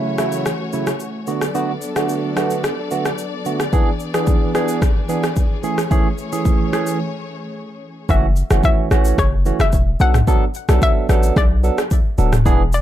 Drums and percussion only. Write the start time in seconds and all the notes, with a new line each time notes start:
0.18 cross-stick, shaker
0.32 shaker
0.46 cross-stick, shaker
0.73 shaker
0.87 cross-stick, shaker
1.00 shaker
1.27 shaker
1.41 cross-stick, shaker
1.55 shaker
1.82 shaker
1.96 cross-stick, shaker
2.09 shaker
2.37 cross-stick, shaker
2.50 shaker
2.64 cross-stick, shaker
2.91 shaker
3.05 cross-stick, shaker
3.18 shaker
3.45 shaker
3.60 cross-stick, shaker
3.73 kick, shaker
4.00 shaker
4.14 cross-stick, shaker
4.27 kick, shaker
4.55 cross-stick, shaker
4.68 shaker
4.82 kick, cross-stick, shaker
5.09 shaker
5.24 cross-stick, shaker
5.36 kick, shaker
5.63 shaker
5.78 cross-stick, shaker
5.91 kick, shaker
6.18 shaker
6.33 shaker
6.45 kick, shaker
6.73 cross-stick, shaker
6.87 shaker
8.09 kick, shaker
8.36 shaker
8.51 cross-stick, shaker
8.63 kick, shaker
8.91 cross-stick, shaker
9.05 shaker
9.18 kick, cross-stick, shaker
9.46 shaker
9.60 cross-stick, shaker
9.73 kick, shaker
10.00 shaker
10.14 cross-stick, mid tom, shaker
10.27 kick, shaker
10.54 shaker
10.69 cross-stick, shaker
10.82 kick, shaker
11.09 cross-stick, shaker
11.23 shaker
11.36 kick, cross-stick, shaker
11.64 shaker
11.78 cross-stick, shaker
11.91 kick, shaker
12.18 shaker
12.33 cross-stick, mid tom, shaker
12.46 kick, shaker
12.73 shaker